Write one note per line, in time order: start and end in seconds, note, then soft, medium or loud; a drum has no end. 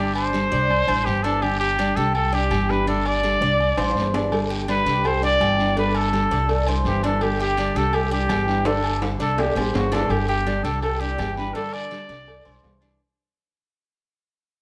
0.00 0.46 G1 medium
0.00 0.31 D3 medium
0.00 0.32 G3 medium
0.00 0.32 D4 medium
0.00 0.33 D4 medium
0.00 0.14 G4 medium
0.00 0.33 G4 medium
0.15 1.07 C5 loud
0.15 low agogo loud
0.32 0.51 D3 medium
0.32 0.51 G3 medium
0.32 0.50 D4 medium
0.32 0.50 G4 medium
0.32 0.52 A4 medium
0.32 short guiro medium
0.51 0.86 C2 loud
0.51 0.69 G3 soft
0.51 0.69 D4 soft
0.51 0.69 G4 medium
0.51 0.87 D5 medium
0.51 short guiro medium
0.69 muted steel-string acoustic guitar stroke medium
0.69 low agogo medium
0.69 long guiro medium
0.87 1.05 A1 medium
0.87 1.06 G3 soft
0.87 1.06 D4 soft
0.87 1.05 E4 medium
0.87 1.23 C5 medium
0.87 low agogo loud
1.05 1.91 G1 loud
1.05 1.24 E3 medium
1.05 1.24 G3 medium
1.05 1.24 D4 medium
1.05 1.23 E4 medium
1.05 1.25 G4 medium
1.05 short guiro medium
1.23 1.41 E3 medium
1.23 1.42 G3 medium
1.23 1.60 D4 medium
1.23 1.42 D4 medium
1.23 1.42 E4 medium
1.23 1.44 A4 medium
1.23 low agogo medium
1.23 short guiro medium
1.42 1.76 D3 medium
1.42 1.77 G3 medium
1.42 1.78 D4 medium
1.42 1.58 G4 medium
1.42 1.78 G4 medium
1.42 low agogo loud
1.42 long guiro medium
1.59 1.97 G4 loud
1.59 1.78 G4 medium
1.78 1.96 D3 medium
1.78 1.96 G3 medium
1.78 1.96 D4 loud
1.78 1.97 D4 medium
1.78 1.96 G4 medium
1.78 low agogo medium
1.78 short guiro medium
1.96 2.47 C2 loud
1.96 2.13 G3 soft
1.96 2.14 D4 soft
1.96 2.14 G4 medium
1.96 2.32 G4 medium
1.96 2.14 A4 loud
1.96 short guiro medium
2.14 2.35 A4 loud
2.14 muted steel-string acoustic guitar stroke medium
2.14 low agogo loud
2.14 long guiro medium
2.32 2.51 G3 soft
2.32 2.51 D4 soft
2.32 2.50 E4 soft
2.32 2.71 G4 loud
2.32 2.50 D5 medium
2.51 3.36 G1 medium
2.51 2.69 E3 medium
2.51 2.69 G3 medium
2.51 2.69 D4 medium
2.51 2.68 E4 medium
2.51 2.86 G4 medium
2.51 low agogo loud
2.51 short guiro medium
2.69 2.86 E3 medium
2.69 2.86 G3 medium
2.69 2.86 D4 medium
2.69 2.87 E4 medium
2.69 2.88 B4 loud
2.69 short guiro medium
2.86 3.21 D3 medium
2.86 3.22 G3 medium
2.86 3.23 D4 medium
2.86 3.23 G4 medium
2.86 3.08 A4 medium
2.86 low agogo medium
2.86 long guiro medium
3.06 4.14 D5 loud
3.06 low agogo loud
3.22 3.40 D3 medium
3.22 3.41 G3 medium
3.22 3.41 D4 medium
3.22 3.40 G4 medium
3.22 3.41 A4 medium
3.22 short guiro medium
3.41 3.75 C2 loud
3.41 3.60 G3 soft
3.41 3.59 D4 soft
3.41 3.59 G4 soft
3.41 3.77 D5 medium
3.41 short guiro medium
3.60 muted steel-string acoustic guitar stroke medium
3.60 low agogo medium
3.60 long guiro medium
3.77 3.94 A1 medium
3.77 3.95 G3 soft
3.77 3.96 D4 soft
3.77 3.95 E4 medium
3.77 4.13 C5 medium
3.77 high timbale medium
3.77 low agogo loud
3.90 high timbale medium
3.96 4.80 G1 medium
3.96 4.13 E3 soft
3.96 4.13 G3 medium
3.96 4.13 D4 medium
3.96 4.12 E4 medium
3.96 short guiro medium
4.02 low timbale medium
4.13 4.32 E3 medium
4.13 4.31 G3 medium
4.13 4.31 D4 medium
4.13 4.49 D4 medium
4.13 4.31 E4 medium
4.13 low timbale loud
4.13 low agogo medium
4.13 short guiro medium
4.32 4.67 D3 medium
4.32 4.67 G3 medium
4.32 4.68 D4 medium
4.32 4.68 G4 medium
4.32 cowbell loud
4.32 low agogo loud
4.32 long guiro medium
4.50 4.68 G4 medium
4.50 cowbell medium
4.68 4.85 D3 medium
4.68 4.86 G3 medium
4.68 4.86 D4 medium
4.68 4.85 D4 medium
4.68 4.84 G4 medium
4.68 5.08 B4 loud
4.68 cowbell medium
4.68 low agogo medium
4.68 short guiro medium
4.86 5.37 C2 medium
4.86 5.03 G3 soft
4.86 5.03 D4 soft
4.86 5.21 G4 medium
4.86 cowbell medium
4.86 short guiro medium
5.04 5.24 C5 loud
5.04 muted steel-string acoustic guitar stroke medium
5.04 cowbell loud
5.04 low agogo loud
5.04 long guiro medium
5.21 5.39 G3 soft
5.21 5.40 D4 soft
5.21 5.39 E4 soft
5.21 5.40 D5 medium
5.21 5.74 D5 loud
5.39 6.25 G1 loud
5.39 5.57 E3 medium
5.39 5.58 G3 medium
5.39 5.57 D4 medium
5.39 5.57 E4 medium
5.39 5.76 G4 medium
5.39 cowbell medium
5.39 low agogo loud
5.39 short guiro medium
5.58 5.75 E3 medium
5.58 5.75 G3 medium
5.58 5.75 D4 medium
5.58 5.76 E4 medium
5.58 short guiro medium
5.76 6.11 D3 medium
5.76 6.12 G3 medium
5.76 6.12 D4 medium
5.76 6.12 G4 medium
5.76 5.97 B4 loud
5.76 cowbell loud
5.76 low agogo medium
5.76 long guiro medium
5.95 6.68 A4 loud
5.95 cowbell medium
5.95 low agogo loud
6.12 6.30 D3 medium
6.12 6.30 G3 medium
6.12 6.30 D4 medium
6.12 6.29 G4 medium
6.12 6.31 A4 medium
6.12 cowbell medium
6.12 short guiro medium
6.31 6.81 C2 loud
6.31 6.48 G3 soft
6.31 6.48 D4 soft
6.31 6.48 G4 medium
6.31 6.66 D5 medium
6.31 cowbell medium
6.31 short guiro medium
6.49 muted steel-string acoustic guitar stroke medium
6.49 cowbell loud
6.49 low agogo medium
6.49 long guiro medium
6.67 6.85 G3 soft
6.67 6.85 D4 soft
6.67 6.84 E4 soft
6.67 7.03 C5 medium
6.67 cowbell medium
6.67 low agogo loud
6.85 7.70 G1 loud
6.85 7.03 E3 medium
6.85 7.03 G3 medium
6.85 7.03 D4 medium
6.85 7.02 E4 medium
6.85 7.03 G4 medium
6.85 cowbell medium
6.85 short guiro medium
7.03 7.21 E3 medium
7.03 7.21 G3 medium
7.03 7.39 D4 medium
7.03 7.21 D4 medium
7.03 7.21 E4 medium
7.03 7.24 A4 medium
7.03 cowbell medium
7.03 low agogo medium
7.03 short guiro medium
7.21 7.56 D3 medium
7.21 7.57 G3 medium
7.21 7.57 D4 medium
7.21 7.40 G4 medium
7.21 7.58 G4 medium
7.21 cowbell loud
7.21 low agogo loud
7.21 long guiro medium
7.40 7.57 G4 medium
7.40 7.78 G4 loud
7.40 cowbell medium
7.57 7.75 D3 medium
7.57 7.75 G3 medium
7.57 7.75 D4 medium
7.57 cowbell medium
7.57 low agogo medium
7.57 short guiro medium
7.75 8.26 C2 loud
7.75 7.92 G3 soft
7.75 7.92 D4 soft
7.75 7.93 G4 medium
7.75 8.11 G4 medium
7.75 7.96 A4 loud
7.75 cowbell medium
7.75 short guiro medium
7.92 8.12 G4 medium
7.92 muted steel-string acoustic guitar stroke medium
7.92 cowbell loud
7.92 low agogo loud
7.92 long guiro medium
8.11 8.28 G3 soft
8.11 8.29 D4 soft
8.11 8.29 E4 medium
8.11 8.68 G4 loud
8.11 8.29 D5 medium
8.29 9.14 G1 loud
8.29 8.47 E3 soft
8.29 8.46 G3 medium
8.29 8.46 D4 medium
8.29 8.45 E4 medium
8.29 8.65 G4 medium
8.29 cowbell medium
8.29 low timbale medium
8.29 low agogo loud
8.29 short guiro medium
8.47 8.65 E3 medium
8.47 8.64 G3 medium
8.47 8.65 D4 medium
8.47 8.65 E4 medium
8.47 short guiro medium
8.65 9.00 D3 medium
8.65 9.00 G3 medium
8.65 9.00 D4 medium
8.65 9.01 D4 medium
8.65 9.01 G4 medium
8.65 9.02 A4 medium
8.65 cowbell loud
8.65 high timbale medium
8.65 low agogo medium
8.65 long guiro medium
8.84 cowbell medium
8.84 low agogo loud
9.01 9.19 D3 medium
9.01 9.19 G3 medium
9.01 9.18 D4 medium
9.01 9.18 G4 medium
9.01 9.20 A4 medium
9.01 cowbell medium
9.01 high timbale medium
9.01 short guiro medium
9.19 9.53 C2 medium
9.19 9.37 G3 soft
9.19 9.37 D4 soft
9.19 9.37 G4 soft
9.19 9.41 A4 medium
9.19 9.55 D5 medium
9.19 cowbell medium
9.19 short guiro medium
9.37 9.75 G4 medium
9.37 muted steel-string acoustic guitar stroke medium
9.37 cowbell loud
9.37 high bongo loud
9.37 low timbale medium
9.37 low agogo medium
9.37 long guiro medium
9.55 9.73 A1 medium
9.55 9.72 G3 soft
9.55 9.73 D4 soft
9.55 9.74 E4 soft
9.55 9.91 C5 medium
9.55 cowbell medium
9.55 low timbale medium
9.55 low agogo loud
9.73 10.06 G1 medium
9.73 9.91 E3 medium
9.73 9.91 G3 medium
9.73 9.91 D4 medium
9.73 9.90 E4 medium
9.73 9.95 F#4 medium
9.73 cowbell medium
9.73 low bongo medium
9.73 low timbale loud
9.73 short guiro medium
9.91 10.09 E3 medium
9.91 10.09 G3 medium
9.91 10.10 D4 loud
9.91 10.10 D4 medium
9.91 10.09 E4 medium
9.91 10.12 A4 medium
9.91 cowbell medium
9.91 low bongo medium
9.91 low timbale medium
9.91 low agogo medium
9.91 short guiro medium
10.09 10.60 G1 loud
10.09 10.44 D3 medium
10.09 10.45 G3 medium
10.09 10.45 D4 medium
10.09 10.28 G4 medium
10.09 10.46 G4 medium
10.09 cowbell medium
10.09 low agogo loud
10.09 long guiro medium
10.28 10.46 G4 medium
10.28 10.65 G4 medium
10.28 cowbell medium
10.45 10.63 D3 medium
10.45 10.64 G3 medium
10.45 10.63 D4 medium
10.45 10.64 D4 medium
10.45 10.62 G4 medium
10.45 cowbell medium
10.45 low agogo medium
10.45 short guiro medium
10.63 11.15 C2 medium
10.63 10.82 G3 soft
10.63 10.82 D4 soft
10.63 10.81 G4 medium
10.63 11.00 G4 medium
10.63 10.81 A4 loud
10.63 cowbell medium
10.63 short guiro medium
10.82 11.01 A4 medium
10.82 muted steel-string acoustic guitar stroke medium
10.82 cowbell loud
10.82 low agogo loud
10.82 long guiro medium
11.00 11.18 G3 soft
11.00 11.18 D4 medium
11.00 11.18 E4 medium
11.00 11.36 G4 medium
11.00 11.18 D5 medium
11.18 11.51 G1 medium
11.18 11.36 E3 medium
11.18 11.37 G3 medium
11.18 11.37 D4 medium
11.18 11.36 E4 medium
11.18 11.54 G4 medium
11.18 cowbell medium
11.18 low timbale medium
11.18 low agogo loud
11.18 short guiro medium
11.37 11.55 E3 medium
11.37 11.55 G3 medium
11.37 11.55 D4 medium
11.37 11.54 E4 medium
11.37 11.56 B4 loud
11.37 short guiro medium
11.54 11.90 D3 medium
11.54 11.91 G3 medium
11.54 11.90 D4 medium
11.54 11.91 D4 medium
11.54 11.91 G4 medium
11.54 11.74 A4 loud
11.54 cowbell loud
11.54 low agogo medium
11.54 long guiro medium
11.73 12.81 D5 loud
11.73 cowbell medium
11.73 low agogo loud
11.91 12.09 D3 medium
11.91 12.09 G3 medium
11.91 12.08 D4 medium
11.91 12.07 G4 medium
11.91 12.09 A4 medium
11.91 cowbell medium
11.91 short guiro medium
12.09 12.43 C2 medium
12.09 12.27 G3 soft
12.09 12.27 D4 medium
12.09 12.26 G4 medium
12.09 12.44 D5 medium
12.09 cowbell medium
12.09 short guiro medium
12.27 muted steel-string acoustic guitar stroke medium
12.27 cowbell loud
12.27 low agogo medium
12.27 long guiro medium
12.45 12.63 B1 medium
12.45 12.61 G3 soft
12.45 12.62 D4 soft
12.45 12.62 E4 medium
12.45 12.80 C5 medium
12.45 cowbell medium
12.45 low agogo loud
12.63 12.96 C2 loud
12.63 12.80 E3 medium
12.63 12.80 G3 medium
12.63 12.80 D4 medium
12.63 12.79 E4 medium
12.63 cowbell medium
12.63 low timbale medium
12.63 short guiro medium
12.80 12.99 E3 medium
12.80 12.99 G3 medium
12.80 12.99 D4 medium
12.80 12.99 D4 loud
12.80 12.98 E4 medium
12.80 cowbell medium
12.80 low agogo medium
12.80 short guiro medium